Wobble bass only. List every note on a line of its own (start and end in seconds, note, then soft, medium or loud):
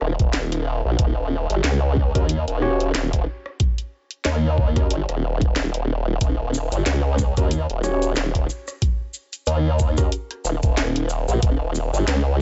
0.01 0.17 D#1 loud
0.20 0.82 D#1 loud
0.85 0.97 A#1 loud
0.99 1.47 D#1 loud
1.50 1.62 G1 medium
1.64 2.12 C#2 medium
2.15 2.45 D#2 medium
2.48 2.92 D#1 loud
2.95 3.25 D#1 loud
4.25 4.88 D#2 medium
4.90 5.06 G1 medium
5.09 5.53 D#1 loud
5.56 6.19 D#1 loud
6.21 6.69 D#1 loud
6.72 6.84 G1 medium
6.86 7.34 C#2 medium
7.37 7.67 D#2 medium
7.69 8.14 D#1 loud
8.16 8.47 D#1 loud
9.47 10.10 D#2 medium
10.45 10.60 D#1 loud
10.63 11.25 D#1 medium
11.28 11.40 A#1 loud
11.43 11.91 D#1 loud
11.93 12.05 G1 medium
12.07 12.42 C#2 medium